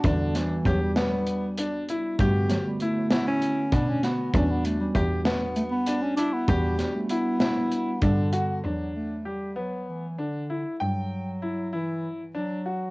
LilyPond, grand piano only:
\new Staff \with { instrumentName = "Grand piano" } { \time 7/8 \key e \dorian \tempo 4 = 98 d'4 g'8 b4 d'8 e'8 | g'4 e'8 e'4 d'8 fis'8 | d'4 g'8 b4 d'8 e'8 | g'4 e'8 e'4 d'8 fis'8 |
d'4 g'8 b4 d'8 e'8 | g''4 e'8 e'4 d'8 fis'8 | }